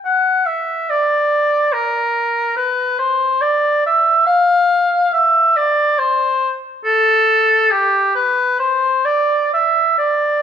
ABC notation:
X:1
M:3/4
L:1/8
Q:1/4=70
K:Dm
V:1 name="Oboe"
_g e d2 B2 | [K:Ddor] B c d e f2 | e d c z A2 | G B c d e d |]